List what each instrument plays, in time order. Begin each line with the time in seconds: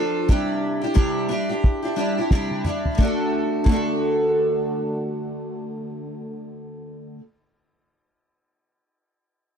Already playing: steel-string acoustic guitar F3 D4 F4 A4
0.29 steel-string acoustic guitar C3 G3 D4 E4 G4, kick
0.82 steel-string acoustic guitar D4 E4 G4
0.94 steel-string acoustic guitar C3 G3 D4 E4 G4, kick
1.29 steel-string acoustic guitar G3 D4 E4 G4
1.49 steel-string acoustic guitar D4 E4 G4
1.64 kick
1.83 steel-string acoustic guitar D4 E4 G4
1.96 steel-string acoustic guitar G3 D4 E4 G4
2.18 steel-string acoustic guitar D4 E4 G4
2.31 steel-string acoustic guitar C3 G3 D4 E4 G4, kick, snare
2.51 high tom
2.65 steel-string acoustic guitar G3 D4 E4 G4, mid tom
2.85 floor tom
2.95 steel-string acoustic guitar D3 A3, kick, ride
3.00 steel-string acoustic guitar D4 F#4
3.05 steel-string acoustic guitar A4
3.64 steel-string acoustic guitar D3 A3, kick, ride
3.69 steel-string acoustic guitar D4 F#4
3.73 steel-string acoustic guitar A4